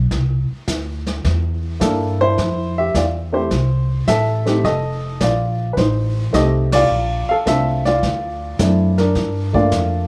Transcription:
Already playing: upright bass B1
0.11 upright bass C2, brush sweep, kick, snare
0.51 muted upright bass stroke
0.68 upright bass D2, kick, snare, hi-hat pedal
1.07 snare
1.25 upright bass E2, brush sweep, kick, snare
1.80 upright bass G2, grand piano A#3 D4 E4 A4, kick, snare, hi-hat pedal
2.21 grand piano E4 C5
2.38 upright bass F2, brush sweep, kick, snare
2.78 grand piano G4 E5
2.94 upright bass E2, grand piano F4 D5, kick, snare, hi-hat pedal
3.33 grand piano A3 C4 E4 G4 C5
3.51 upright bass C2, brush sweep, kick, snare
4.08 upright bass A1, grand piano A4 E5, kick, snare, hi-hat pedal
4.46 grand piano A3 C4 D#4 G4, snare
4.64 upright bass F1, grand piano A4 D#5, brush sweep, kick, snare
5.21 upright bass A#1, grand piano F4 D5, kick, snare, hi-hat pedal
5.73 upright bass A1, grand piano B4, brush sweep, kick, snare
5.78 grand piano D#4 C5
6.33 upright bass C2, grand piano A3 C4 D#4 G4 A4 D#5, kick, snare, hi-hat pedal
6.72 grand piano F4 D5, snare, ride
6.89 upright bass A#1, brush sweep
7.29 grand piano A4 F5, muted upright bass stroke
7.46 upright bass C2, grand piano A3 C4 D4 F4 A4 E5, kick, snare, hi-hat pedal
7.85 grand piano F4 D5, snare
8.03 upright bass D2, brush sweep, kick, snare
8.59 upright bass F#2, grand piano A3 C4 D4 E4, kick, snare, hi-hat pedal
8.98 grand piano D4 A#4, snare
9.15 upright bass G2, brush sweep, kick, snare
9.53 grand piano A3 A#3 D4 F4 D5, kick
9.72 upright bass F2, kick, snare, hi-hat pedal

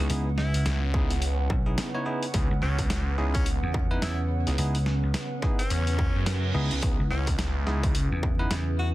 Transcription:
Already playing: analog synth pad C#3 B3 C#4, ambient pad C#4 B4 F#5
0.10 slap bass C#2, tine electric piano B3 D#4 E4 G#4, closed hi-hat
0.38 tenor saxophone E4, snare
0.54 slap bass C#2, closed hi-hat
0.66 detuned saw bass C#2, snare, closed hi-hat
0.94 tine electric piano B3 D#4 E4 G#4, kick
1.10 closed hi-hat
1.22 closed hi-hat
1.50 slap bass B1, kick
1.66 tine electric piano B3 D#4 E4 G#4
1.78 snare, closed hi-hat
1.94 tine electric piano B3 D#4 E4 C#5
2.06 tine electric piano B3 D#4 E4 G#4
2.23 closed hi-hat
2.34 detuned saw bass C#2, tine electric piano B3 D#4 E4 G#4, kick, closed hi-hat
2.50 slap bass C#2
2.62 detuned saw bass C#2, tenor saxophone C#4, snare
2.79 kick, closed hi-hat
2.90 snare, closed hi-hat
3.18 detuned saw bass C#2, tine electric piano B3 D#4 E4 G#4
3.34 tenor saxophone C#4, kick, closed hi-hat
3.46 closed hi-hat
3.63 slap bass E2
3.74 kick
3.91 tine electric piano B3 D#4 E4 B4
4.02 slap bass E2, tenor saxophone E4, snare, closed hi-hat
4.47 detuned saw bass C#2, tine electric piano B3 D#4 E4 G#4, closed hi-hat
4.58 slap bass C#2, tine electric piano B3 D#4 E4 G#4, closed hi-hat
4.75 closed hi-hat
4.86 snare
5.03 slap bass C#2
5.14 snare, closed hi-hat
5.42 tine electric piano B3 D#4 E4 G#4, kick, snare
5.59 tenor saxophone C#4, closed hi-hat
5.70 detuned saw bass E2, closed hi-hat, reverse cymbal
5.87 closed hi-hat
5.99 kick
6.15 detuned saw bass F#2
6.26 snare, closed hi-hat
6.54 slap bass C#2, tine electric piano B3 D#4 E4 G#4
6.71 detuned saw bass C#2, closed hi-hat
6.82 detuned saw bass C#2, tine electric piano B3 D#4 E4 G#4, analog synth pad E4, kick, closed hi-hat
6.99 slap bass C#2
7.11 detuned saw bass C#2, tenor saxophone C#4, snare
7.18 ambient pad E5
7.27 kick, closed hi-hat
7.39 snare, closed hi-hat
7.67 detuned saw bass C#2, tine electric piano B3 D#4 E4 G#4, snare
7.83 kick, closed hi-hat
7.95 closed hi-hat
8.11 slap bass E2
8.23 kick
8.39 tine electric piano B3 D#4 E4 B4
8.51 slap bass E2, snare, closed hi-hat
8.79 tenor saxophone F#4

